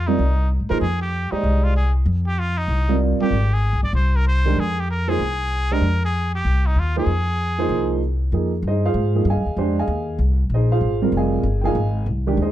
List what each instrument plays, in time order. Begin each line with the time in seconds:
Already playing: upright bass F2
0.07 grand piano G3 C4 F4 A#4 D5, muted trumpet D#4
0.19 upright bass C2
0.60 upright bass G#2
0.70 upright bass C3, grand piano F3 A#3 D#4 G#4 C5, muted trumpet A#4
0.81 upright bass F2, muted trumpet G#4
1.01 muted trumpet G4
1.32 upright bass D#2, grand piano G#3 G4 C5 D5 D#5, muted trumpet D#4
1.43 upright bass C2
1.64 muted trumpet F4
1.76 muted trumpet G#4
2.06 upright bass F2
2.27 muted trumpet G4
2.39 muted trumpet F4
2.58 muted trumpet D#4
2.68 upright bass C2
2.89 grand piano G3 C4 F4 A#4 D5
3.19 grand piano G3 C4 F4 A#4 D5, muted trumpet G4, muted upright bass stroke
3.31 upright bass G#1
3.54 muted trumpet G#4
3.73 upright bass C2
3.83 upright bass G1, muted trumpet D5
3.93 upright bass C2, muted trumpet C5
4.16 muted trumpet A#4
4.28 muted trumpet C5
4.45 grand piano D#3 G#3 D4 G4 A#4
4.56 upright bass F2, muted trumpet G#4
4.80 muted trumpet G4
4.90 muted trumpet A#4
5.08 grand piano F3 A#3 D#4 G#4 C5, muted trumpet G#4
5.19 upright bass C2
5.71 grand piano G#3 D4 G4 C5 D#5, muted trumpet A#4
5.81 upright bass F2
6.05 muted trumpet G#4
6.35 muted trumpet G4
6.45 upright bass C2
6.66 muted trumpet D#4
6.75 upright bass D#2
6.80 muted trumpet F4
6.96 grand piano F3 A#3 D#4 G#4 C5, muted trumpet G#4
7.06 upright bass F2
7.58 grand piano F3 A#3 D#4 G#4 C5
7.69 upright bass C2
8.32 upright bass F2, grand piano F3 A#3 D#4 G#4
8.62 upright bass G2
8.67 grand piano D#4 G#4 C5 D#5
8.85 grand piano F4 G#4 C5 F5
8.94 upright bass G#2
9.15 grand piano F3 A#3 D#4 G#4
9.25 upright bass G2
9.30 grand piano G#4 D#5 F5 G#5
9.36 upright bass F2
9.46 upright bass D#2
9.57 upright bass F2, grand piano G#3 D4 G4 C5
9.79 grand piano G#4 D#5 F5 G#5
9.87 upright bass D#2
10.18 upright bass C2
10.50 upright bass A#1
10.54 grand piano D#4 G#4 C5 D#5
10.72 grand piano F4 G#4 C5 F5
10.81 upright bass G#1
11.02 grand piano G3 C4 F4 A#4
11.12 upright bass F1
11.17 grand piano G#4 D#5 F5 G#5
11.43 upright bass G1
11.61 grand piano F3 A#3 D#4 G#4 G5
11.65 grand piano D#5 F5 G#5
11.75 upright bass G#1
12.06 upright bass C2
12.27 grand piano D#3 G#3 D4 G4
12.37 upright bass D#2
12.42 grand piano D#4 G#4 C5 D#5